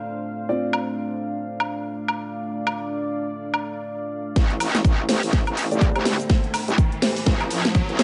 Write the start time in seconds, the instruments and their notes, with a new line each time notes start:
Already playing: ambient pad A3 D4 C5 F5, grand piano C4 F4 D5
0.49 grand piano C4 F4 D5, ambient pad D5
0.73 high woodblock
1.60 high woodblock
2.08 high woodblock
2.67 high woodblock
3.54 high woodblock
4.36 wobble bass A1, ambient pad A3 E4 G4 C5, kick, snare, closed hi-hat, riser, cabasa
4.50 closed hi-hat
4.60 open hi-hat, cabasa, high woodblock
4.75 snare, closed hi-hat, cabasa
4.84 wobble bass A1, kick, closed hi-hat, cabasa
5.09 grand piano A3 G4 C5, snare, open hi-hat, cabasa
5.23 wobble bass A1, open hi-hat, cabasa
5.33 kick, snare, closed hi-hat, cabasa
5.47 wobble bass A1, closed hi-hat, high woodblock
5.57 open hi-hat, cabasa
5.71 grand piano A3 G4 D5, closed hi-hat, cabasa
5.81 kick, closed hi-hat, cabasa
5.96 wobble bass C2, grand piano A3 G4 C5, closed hi-hat, high woodblock
6.05 snare, open hi-hat, cabasa
6.20 closed hi-hat, cabasa
6.30 kick, snare, closed hi-hat, cabasa
6.44 closed hi-hat
6.54 open hi-hat, cabasa, high woodblock
6.68 wobble bass C2, closed hi-hat, cabasa
6.78 kick, closed hi-hat, cabasa
6.92 closed hi-hat
7.02 grand piano A3 G4 C5, snare, open hi-hat, cabasa
7.16 open hi-hat, cabasa
7.26 wobble bass A1, kick, snare, closed hi-hat, cabasa
7.41 closed hi-hat, high woodblock
7.50 open hi-hat, cabasa
7.65 snare, closed hi-hat, cabasa
7.75 kick, closed hi-hat, cabasa
7.89 wobble bass A1, closed hi-hat
7.99 grand piano A3 G4 C5, snare, open hi-hat, cabasa